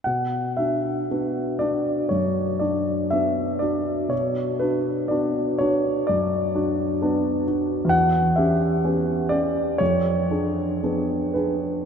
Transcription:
\new Staff \with { instrumentName = "Grand piano" } { \time 4/4 \key b \minor \tempo 4 = 60 << { fis''8 e''4 d''8 cis''8 d''8 e''8 d''8 | cis''8 b'8 d''8 cis''8 d''4. r8 | fis''8 e''4 d''8 cis''4. ces''8 | } \\ { b,8 <d' fis'>8 <b d' fis'>8 <d' fis'>8 fis,8 <d' fis'>8 <b d' fis'>8 <d' fis'>8 | b,8 <d' fis'>8 <b d' fis'>8 <d' fis'>8 fis,8 <d' fis'>8 <b d' fis'>8 <d' fis'>8 | e,8 <cis' g'>8 <b cis' g'>8 <cis' g'>8 f,8 <d' aes'>8 <ces' d' aes'>8 <d' aes'>8 | } >> }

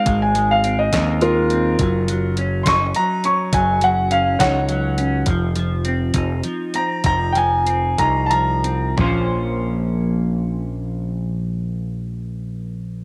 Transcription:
<<
  \new Staff \with { instrumentName = "Upright piano" } { \time 6/8 \key bes \minor \tempo 4. = 68 f''16 aes''8 f''8 ees''8. <f' bes'>4~ | <f' bes'>4 r8 <c''' des'''>8 bes''8 des'''8 | aes''8 ges''8 f''8 <des'' ges''>4. | r2 r8 bes''8 |
bes''8 <g'' aes''>4 bes''8 <a'' bes''>4 | r2. | r2. | }
  \new Staff \with { instrumentName = "Clean electric guitar" } { \time 6/8 \key bes \minor <aes c' ees'>8 aes8 c'8 ees'8 aes8 c'8 | ges8 ges8 des'8 ees'8 ges8 des'8 | ges8 ges8 des'8 ees'8 ges8 des'8 | f8 f8 c'8 ees'8 f8 c'8 |
f8 f8 c'8 ees'8 f8 c'8 | <bes, f bes des' f' c''>2.~ | <bes, f bes des' f' c''>2. | }
  \new Staff \with { instrumentName = "Picked electric bass" } { \clef bass \time 6/8 \key bes \minor aes,,4. ees,4. | ges,,4. ges,,8 r4 | ges,,4. des,4. | f,,4. f,,8 r4 |
f,,4. c,4. | bes,,2.~ | bes,,2. | }
  \new DrumStaff \with { instrumentName = "Drums" } \drummode { \time 6/8 <hh bd>8 hh8 hh8 <hh bd sn>8 hh8 hh8 | <hh bd>8 hh8 hh8 <hh bd sn>8 hh8 hh8 | <hh bd>8 hh8 hh8 <hh bd sn>8 hh8 hh8 | <hh bd>8 hh8 hh8 <hh bd>8 hh8 hh8 |
<hh bd>8 hh8 hh8 <hh bd>8 hh8 hh8 | <bd tomfh>4. r4. | r4. r4. | }
>>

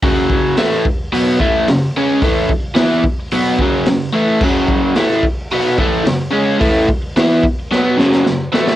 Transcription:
<<
  \new Staff \with { instrumentName = "Overdriven electric guitar" } { \clef bass \time 4/4 \key fis \minor \tempo 4 = 109 <fis, cis fis>4 <a, e a>8 r8 <b, fis b>8 <a, e a>8 <fis, cis>8 <cis gis cis'>8 | <a, e a>8 r8 <e b e'>8 r8 <b, fis b>8 <fis, cis fis>8 <fis, cis>8 <a, e a>8 | <fis, cis fis>4 <a, e a>8 r8 <b, fis b>8 <a, e a>8 <fis, cis>8 <cis gis cis'>8 | <a, e a>8 r8 <e b e'>8 r8 <b, fis b>8 <fis, cis fis>8 <fis, cis>8 <a, e a>8 | }
  \new DrumStaff \with { instrumentName = "Drums" } \drummode { \time 4/4 <hho bd>8 bd8 <hho sn>16 sn16 bd8 hho8 bd8 <hho sn>4 | <hho bd>8 bd8 <hho sn>16 sn16 bd8 hho8 bd8 <hho sn>4 | <cymc bd>8 bd8 <hho sn>16 sn16 bd8 hho8 bd8 <hho sn>4 | <hho bd>8 bd8 <hho sn>16 sn16 bd8 sn8 sn16 sn16 sn8 sn16 sn16 | }
>>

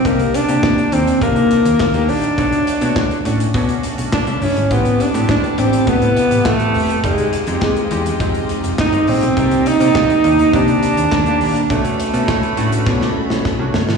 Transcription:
<<
  \new Staff \with { instrumentName = "String section" } { \time 4/4 \key c \lydian \tempo 4 = 103 r1 | r1 | <g' a' b' a''>1 | <aes f' ees'' g''>1 |
<ees c'' d'' bes''>1 | <a' b' cis'' b''>1 | }
  \new Staff \with { instrumentName = "Analog polysynth" } { \time 4/4 \key c \lydian <bes d' ees' g'>8 r16 <ees bes d' g'>8 r16 <bes d' ees' a'>8 <bes d' ees' f'>4 r16 <bes d' ees' g'>8 r16 | <a d' fis' cis''>8 r16 <a d' fis' cis''>8 r16 <a cis' d' fis'>8 <a cis' d' fis'>4 r16 <a cis' d' e'>8 r16 | <b c' e' g'>8 r16 <b c' e' g'>8 r16 <b c' e' g'>8 <c b e' g'>4 r16 <b c' e' g'>8 r16 | <aes c' ees' g'>8 r16 <aes c' ees' g'>8 r16 <aes c' ees' g'>8 <aes c' ees' g'>4 r16 <aes c' ees' g'>8 r16 |
<bes d' ees' g'>8 r16 <bes ees' g' d''>8 r16 <bes d' ees' g'>8 <ees bes d' g'>4 r16 <ees bes d' g'>8 r16 | <a cis' d' fis'>8 r16 <a cis' d' fis'>8 r16 <a cis' d' fis'>8 <a cis' d' fis'>4 r16 <a cis' d' fis'>8 r16 | }
  \new Staff \with { instrumentName = "Alto saxophone" } { \time 4/4 \key c \lydian bes8 d'4 c'8 bes4. d'8~ | d'4. r4. d'8 cis'8 | b8 d'8 d'8 c'8 b4 a4 | aes4 aes4. r8 ees'8 c'8~ |
c'8 ees'4. d'2 | a2. r4 | }
  \new Staff \with { instrumentName = "FM bass" } { \clef bass \time 4/4 \key c \lydian c,8 r16 c16 r8 ees,8 c8 r16 ees,16 ees,8 bes,,8 | b,,8 r16 b,16 r8 a,8 b,8 r16 b,,16 r16 c,16 g,,16 gis,,16 | a,,8 r16 a,16 r8 a,,8 a,8 r16 a,,16 a,,8 e,,8 | f,,8 r16 f,16 r8 e,8 f,8 r16 f,,16 r16 g,,16 bes,,16 b,,16 |
c,8 r16 c16 r8 ees,8 c8 r16 ees,16 ees,8 bes,,8 | b,,8 r16 b,16 r8 a,8 b,8 r16 b,,16 r16 c,16 g,,16 gis,,16 | }
  \new DrumStaff \with { instrumentName = "Drums" } \drummode { \time 4/4 <hh bd>16 hh16 hh16 hh16 <hc bd sn>16 hh16 hh16 hh16 <hh bd>16 hh16 hh16 hh16 <hc bd sn>16 hh16 hho16 hh16 | <hh bd>16 hh16 hh16 hh16 <hc bd sn>16 hh16 hh16 hh16 <hh bd>16 hh16 hh16 hh16 <hc bd sn>16 hh16 hho16 hh16 | <hh bd>16 hh16 hh16 hh16 <hc bd sn>16 hh16 hh16 hh16 <hh bd>16 hh16 hh16 hh16 <hc bd sn>16 hh16 hho16 hh16 | <hh bd>16 hh16 hh16 hh16 <hc bd sn>16 hh16 hh16 hh16 <hh bd>16 hh16 hh16 hh16 <hc bd sn>16 hh16 hho16 hh16 |
<hh bd>16 hh16 hh16 hh16 <hc bd sn>16 hh16 hh16 hh16 <hh bd>16 hh16 hh16 hh16 <hc bd sn>16 hh16 hho16 hh16 | <hh bd>16 hh16 hh16 hh16 <hc bd sn>16 hh16 hh16 hh16 <bd sn>16 sn8 sn16 <bd sn>8 sn16 sn16 | }
>>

